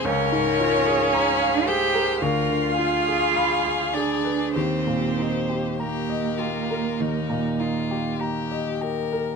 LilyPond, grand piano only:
\new Staff \with { instrumentName = "Grand piano" } { \time 4/4 \key ees \mixolydian \tempo 4 = 51 des,16 aes,16 f'16 aes'16 bes''16 f''16 aes'16 bes'16 d,16 d16 f'16 aes'16 b''16 f''16 aes'16 b'16 | ees,16 bes,16 ees'16 g'16 bes''16 ees''16 g'16 bes'16 ees,16 bes,16 ees'16 g'16 bes''16 ees''16 g'16 bes'16 | }